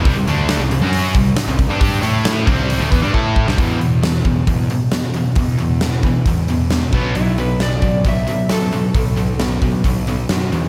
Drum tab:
HH |o-o-o-o-o-o-o-o-|o-o-o-o-o-o-----|o-o-o-o-o-o-o-o-|o-o-o-o-o-o-o-o-|
SD |----o-------o---|----o----------o|----o-------o---|----o-------o---|
BD |o---------o---o-|o-----o---o-o-o-|o-----o-o-------|o-----o-o-----o-|

HH |o-o-o-o-o-o-o-o-|o-o-o-o-o-o-o-o-|
SD |----o-------o---|----o-------o---|
BD |------o-o-------|o-----o-o-------|